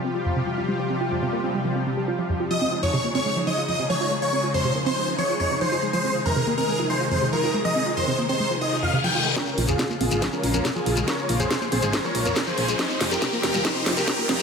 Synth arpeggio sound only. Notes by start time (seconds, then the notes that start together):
0.04 C4
0.15 F4
0.26 F2
0.36 C3
0.47 F3
0.58 F4
0.69 G3
0.79 F3
0.90 C4
1.01 F4
1.11 F2
1.22 C3
1.33 A#3
1.44 C4
1.54 G3
1.65 F3
1.76 C4
1.86 C3
1.97 G3
2.08 F4
2.19 F3
2.29 F2
2.40 F4
2.51 F3
2.61 C4
2.72 F4
2.83 F2
2.94 C3
3.04 A#3
3.15 C4
3.26 G#3
3.36 F3
3.47 F3
3.58 F4
3.69 F2
3.79 C3
3.90 F3
4.01 F4
4.11 G#3
4.22 F3
4.33 C4
4.43 F4
4.54 F2
4.65 C3
4.76 A#3
4.86 C4
4.97 G#3
5.08 F3
5.18 F3
5.29 F4
5.40 F2
5.51 C3
5.61 F3
5.72 F4
5.83 G#3
5.93 F3
6.04 C4
6.15 F4
6.26 F2
6.36 C3
6.47 A#3
6.58 C4
6.68 G#3
6.79 F3
6.90 F3
7.01 F4
7.11 F2
7.22 C3
7.33 F3
7.43 F4
7.54 G#3
7.65 F3
7.76 C4
7.86 F4
7.97 F2
8.08 C3
8.18 A#3
8.29 C4
8.40 G#3
8.51 F3
8.61 F3
8.72 F4
8.83 F2
8.93 C3
9.04 F3
9.15 F4
9.26 G#3
9.36 F3
9.47 C4
9.58 F4
9.69 F2
9.79 C3
9.90 A#3
10.01 C4
10.11 G#3
10.22 F3
10.33 F3
10.43 F4
10.54 F2
10.65 C3
10.76 F3
10.86 F4
10.97 G#3
11.08 F3
11.18 C4
11.29 F4
11.40 F2
11.51 C3
11.61 A#3
11.72 C4
11.83 G#3
11.93 F3
12.04 F3
12.15 F4
12.26 F2
12.36 C3
12.47 F3
12.58 F4
12.68 G#3
12.79 F3
12.90 C4
13.01 F4
13.11 F2
13.22 C3
13.33 A#3
13.43 C4
13.54 G3
13.65 F3
13.76 C4
13.86 F4
13.97 F2
14.08 C3
14.19 A#3
14.29 C4